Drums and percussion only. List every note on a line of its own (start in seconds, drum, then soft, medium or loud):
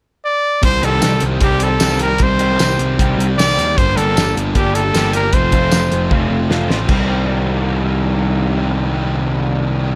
0.63 kick loud
0.63 closed hi-hat medium
0.83 closed hi-hat medium
1.02 snare loud
1.02 closed hi-hat medium
1.02 tambourine loud
1.20 closed hi-hat medium
1.41 kick medium
1.41 closed hi-hat medium
1.60 closed hi-hat medium
1.80 snare medium
1.80 closed hi-hat medium
1.80 tambourine loud
1.99 closed hi-hat medium
2.18 kick medium
2.18 closed hi-hat medium
2.39 closed hi-hat medium
2.59 snare loud
2.59 closed hi-hat medium
2.59 tambourine medium
2.79 closed hi-hat medium
2.99 kick medium
2.99 closed hi-hat medium
3.20 closed hi-hat medium
3.39 snare loud
3.39 closed hi-hat medium
3.39 tambourine loud
3.59 closed hi-hat medium
3.78 kick loud
3.78 closed hi-hat medium
3.97 closed hi-hat medium
4.17 snare loud
4.17 closed hi-hat medium
4.17 tambourine loud
4.37 closed hi-hat medium
4.55 kick medium
4.55 closed hi-hat medium
4.75 closed hi-hat medium
4.95 snare medium
4.95 closed hi-hat medium
4.95 tambourine medium
5.13 closed hi-hat medium
5.33 kick medium
5.33 closed hi-hat medium
5.52 kick medium
5.52 closed hi-hat medium
5.72 snare loud
5.72 closed hi-hat medium
5.72 tambourine loud
5.92 closed hi-hat medium
6.11 kick medium
6.11 high tom medium
6.51 snare medium
6.70 snare medium
6.89 kick medium
6.89 crash medium